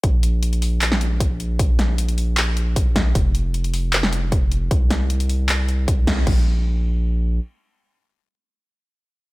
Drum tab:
CC |----------------|----------------|----------------|----------------|
HH |x-x-xxo-x-x-x-x-|x-x-xxo-x-x-x-x-|x-x-xxo-x-x-x-x-|x-x-xxo-x-x-x-x-|
CP |--------x-------|--------x-------|--------x-------|--------x-------|
SD |---------o------|--o-----------o-|---------o------|--o-----------o-|
BD |o-----------o---|o-----------o-o-|o-----------o---|o-----------o-o-|

CC |x---------------|----------------|
HH |----------------|----------------|
CP |----------------|----------------|
SD |----------------|----------------|
BD |o---------------|----------------|